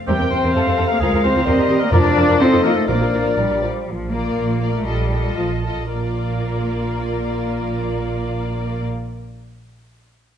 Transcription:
0.07 double bass section E2, bassoon C3, cello section G3, viola section C4, french horn section C4 A#4, oboe G4, violin section A#4 G5, clarinet A#4, flute section G5
0.19 double bass section E2, viola section C4, violin section A#4
0.30 double bass section E2, viola section C4, cello section C4, violin section A#4, oboe C5
0.43 double bass section E2, viola section C4, violin section A#4
0.54 double bass section F2, bassoon C3, viola section C4, french horn section A4, violin section A4 F5, clarinet A4, flute section F5
0.66 double bass section F2, viola section C4, violin section A4
0.77 double bass section F2, viola section C4, violin section A4
0.89 cello section A#3, oboe A#4
1.00 double bass section D2, bassoon F3, cello section G#3, french horn section F4 A#4, viola section F4, oboe G#4, clarinet A#4, violin section A#4, flute section F5
1.13 double bass section D2, viola section F4, violin section A#4
1.24 double bass section D2, cello section C4, viola section F4, violin section A#4, oboe C5
1.35 double bass section D2, viola section F4, violin section A#4
1.46 double bass section D#2, bassoon G3, viola section G4, french horn section G4, violin section A#4 D#5, clarinet A#4, flute section D#5
1.57 double bass section D#2, viola section G4, violin section A#4
1.68 double bass section D#2, viola section G4, violin section A#4
1.80 cello section A#3, oboe A#4
1.91 timpani F2, double bass section F2, bassoon F3, cello section D4, french horn section F4, viola section F4, violin section A#4 D5, clarinet A#4, oboe D5, flute section D5
2.04 double bass section F2, viola section F4, violin section A#4
2.16 double bass section F2, viola section F4, violin section A#4
2.27 double bass section F2, viola section F4, violin section A#4
2.39 double bass section F2, bassoon F3, cello section C4, french horn section D#4 A4, viola section F4, clarinet A4, violin section A4 D#5, oboe C5, flute section D#5
2.51 double bass section F2, viola section F4, violin section A4
2.63 double bass section F2, cello section A#3, viola section F4, violin section A4, oboe A#4
2.75 cello section A3, oboe A4
2.87 double bass section A#1, timpani A#2, bassoon F3, cello section A#3, french horn section D4 A#4, viola section F4, oboe A#4, clarinet A#4, violin section A#4 D5, flute section D5
3.00 double bass section A#1, viola section F4, violin section A#4
3.13 double bass section A#1, viola section F4, violin section A#4
3.25 double bass section A#1, viola section F4, violin section A#4
3.37 double bass section A#1, bassoon G3, cello section G3, viola section F4, violin section A#4
3.50 double bass section A#1, viola section F4, violin section A#4
3.62 double bass section A#1, bassoon F3, viola section F4, violin section A#4
3.87 double bass section A#1, cello section F3
4.11 cello section A#3, viola section F4, violin section A#4 D5
4.36 double bass section A#1
4.60 viola section F4, violin section A#4 D5
4.74 cello section A3
4.85 double bass section A#1, cello section G3, viola section F4, violin section A4 D#5
5.10 viola section F4, violin section A4 D#5
5.36 double bass section A#1, cello section F3
5.64 viola section F4, violin section A4 D#5
5.92 double bass section A#1, cello section A#3, viola section F4, violin section A#4 D5

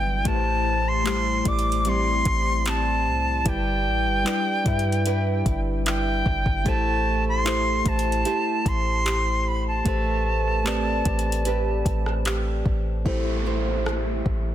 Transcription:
Already playing: 808-style bass G1, nylon-string guitar G2 E3 B3 D4, synth keys F#3 G3 E4 B4 E5, flute G5
0.24 808-style bass A1, nylon-string guitar A2, synth keys A3 E4 G4 B4, flute A5, kick, closed hi-hat
0.34 synth keys C5
0.88 flute C6
1.04 nylon-string guitar G3, synth keys A3 E4 G4 C5, clap, closed hi-hat
1.44 808-style bass A1, synth keys A3 E4 G4 D5, flute D6, kick, closed hi-hat
1.59 closed hi-hat
1.72 closed hi-hat
1.85 nylon-string guitar G3 C4 E4, flute C6, closed hi-hat
2.25 808-style bass A1, kick, closed hi-hat
2.66 nylon-string guitar C4, flute A5, clap, closed hi-hat
3.06 808-style bass C2
3.44 808-style bass G1, synth keys G3 E4 B4 D5, nylon-string guitar G3, flute G5, kick, closed hi-hat
3.86 808-style bass A1
4.06 808-style bass G1
4.24 synth keys G3 E4 B4 D5, nylon-string guitar D4, clap, closed hi-hat
4.64 808-style bass G2, synth keys G3 E4 B4 E5, kick, closed hi-hat
4.79 closed hi-hat
4.92 closed hi-hat
5.06 nylon-string guitar D4 E4 B4, closed hi-hat
5.46 808-style bass G1, kick, closed hi-hat
5.86 nylon-string guitar E4, flute G5, clap, closed hi-hat
6.26 808-style bass G1, kick
6.46 808-style bass G1, kick
6.64 808-style bass A1, synth keys A3 E4 G4 C5, nylon-string guitar A3, kick, closed hi-hat
6.68 flute A5
7.28 flute C6
7.44 synth keys A3 E4 G4 C5, nylon-string guitar E4, clap, closed hi-hat
7.84 808-style bass A1, synth keys A3 E4 G4 C5, flute A5, kick, closed hi-hat
7.99 closed hi-hat
8.12 closed hi-hat
8.25 nylon-string guitar E4 G4 C5, closed hi-hat
8.66 808-style bass A1, flute C6, kick, closed hi-hat
9.05 nylon-string guitar G4, clap, closed hi-hat
9.48 flute B5
9.67 flute A5
9.84 808-style bass A1, synth keys A3 G4 B4 C5, nylon-string guitar A3, kick, closed hi-hat
10.64 synth keys A3 G4 B4 D5, nylon-string guitar C4, clap, closed hi-hat
11.04 808-style bass A1, synth keys A3 G4 B4 D5, kick, closed hi-hat
11.19 closed hi-hat
11.32 closed hi-hat
11.45 nylon-string guitar C4 G4 B4, closed hi-hat
11.86 808-style bass A1, kick, closed hi-hat
12.06 cross-stick
12.25 nylon-string guitar G4, clap, closed hi-hat
12.66 808-style bass A1, kick
13.04 808-style bass A1, synth keys A3 E4 G4 C5, nylon-string guitar A3, kick, downlifter
13.46 nylon-string guitar E4 G4 C5
13.86 nylon-string guitar E4, cross-stick
14.26 808-style bass A1, kick

